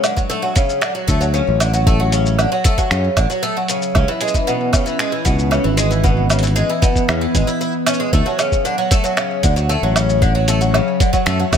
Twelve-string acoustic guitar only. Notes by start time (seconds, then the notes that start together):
0.03 D3
0.16 F#3
0.29 A3
0.42 F#3
0.55 C#3
0.81 D3
0.95 F#3
1.08 A3
1.21 F#3
1.34 C#3
1.60 D3
1.73 F#3
1.87 A3
2.00 F#3
2.12 C#3
2.39 D3
2.52 F#3
2.65 A3
2.78 F#3
2.91 C#3
3.17 D3
3.30 F#3
3.43 A3
3.57 F#3
3.69 C#3
3.95 C#3
4.08 E3
4.21 G#3
4.34 E3
4.47 B2
4.73 C#3
4.86 E3
4.99 G#3
5.12 E3
5.25 B2
5.51 C#3
5.64 E3
5.77 G#3
5.91 E3
6.04 B2
6.29 C#3
6.43 E3
6.56 G#3
6.69 E3
6.82 B2
7.08 C#3
7.21 E3
7.35 G#3
7.47 E4
7.61 E4
7.87 C#4
8.00 G#3
8.13 A3
8.26 F#3
8.39 C#3
8.65 D3
8.78 F#3
8.91 A3
9.04 F#3
9.17 C#3
9.43 D3
9.56 F#3
9.69 A3
9.83 F#3
9.96 C#3
10.22 D3
10.35 F#3
10.48 A3
10.61 F#3
10.74 C#3
11.00 D3
11.13 F#3
11.26 A3
11.39 F#3
11.52 C#3